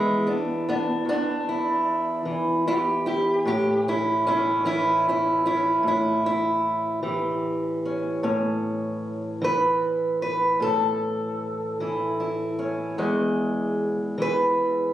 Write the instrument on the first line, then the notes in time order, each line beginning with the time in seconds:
steel-string acoustic guitar
Already playing: E2 E3 G#3 E4
0.27 B3 D4
0.69 B3 D4
1.05 E2 B3
1.09 D4
1.49 E4
2.25 E3
2.68 E4 G4
3.06 E4 G4
3.45 A2 E4 G4
3.88 C#4 E4
4.27 C#4 E4
4.65 E3 C#4 E4
5.09 C#4 E4
5.46 C#4 E4
5.83 A2
5.87 C#4 E4
6.26 E4
7.03 E3 G4
7.85 C#4
8.23 A2 C#4
9.42 E3 B4
10.22 B4
10.60 A2 A4
11.80 E3 E4
12.20 E4
12.59 C#4
12.98 E2 G#3
14.18 E3
14.22 B4